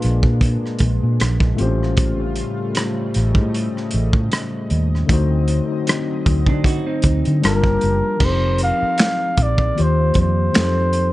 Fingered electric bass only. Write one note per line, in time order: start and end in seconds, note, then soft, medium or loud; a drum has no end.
0.05 0.21 A#1 medium
0.24 0.56 A#2 medium
0.81 0.98 A#1 medium
1.03 1.17 A#2 medium
1.21 1.53 A#1 medium
1.60 2.41 A1 medium
3.16 3.37 A1 medium
3.36 3.68 A2 medium
3.94 4.11 A1 medium
4.14 4.28 A2 medium
4.71 5.03 D#2 medium
5.10 5.59 D2 medium
6.27 6.49 D2 medium
6.48 6.79 D3 medium
7.05 7.22 D2 medium
7.27 7.41 D3 medium
7.45 7.76 G1 medium
7.84 8.00 F#1 medium
8.21 8.70 F1 loud
8.83 muted fingered electric bass stroke soft
9.39 9.70 A#1 medium
9.80 10.10 D#2 medium
10.16 10.48 F2 medium
10.57 11.13 F2 medium